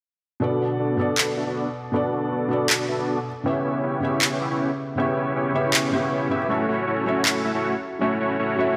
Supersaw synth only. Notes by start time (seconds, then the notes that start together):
0.42 B3 D4 F#4 A4 D5
0.61 B3 D4 F#4 A4 D5
0.80 B3 D4 F#4 A4 D5
0.98 B3 D4 F#4 A4 D5
1.37 B3 D4 F#4 A4 E5
1.47 B3 D4 F#4 A4 D5
1.93 B3 D4 F#4 A4 D5
2.12 B3 D4 F#4 A4 D5
2.32 B3 D4 F#4 A4 D5
2.50 B3 D4 F#4 A4 D5
2.88 B3 D4 F#4 A4 E5
2.98 B3 D4 F#4 A4 D5
3.45 B3 C#4 E4 G4 C#5
3.65 B3 C#4 E4 G4 C#5
3.83 B3 C#4 E4 G4 C#5
4.02 B3 C#4 E4 G4 C#5
4.40 B3 C#4 E4 G4 E5
4.51 B3 C#4 E4 G4 C#5
4.98 B3 C#4 E4 G4 C#5
5.17 B3 C#4 E4 G4 C#5
5.36 B3 C#4 E4 G4 C#5
5.55 B3 C#4 E4 G4 C#5
5.92 B3 C#4 E4 G4 C#5
6.30 B3 C#4 E4 G4 E5
6.49 A3 C#4 E4 F#4 C#5
6.68 A3 C#4 E4 F#4 C#5
6.87 A3 C#4 E4 F#4 C#5
7.06 A3 C#4 E4 F#4 C#5
7.44 A3 C#4 E4 F#4 E5
7.54 A3 C#4 E4 F#4 C#5
8.01 A3 C#4 E4 F#4 C#5
8.20 A3 C#4 E4 F#4 C#5
8.39 A3 C#4 E4 F#4 C#5
8.58 A3 C#4 E4 F#4 C#5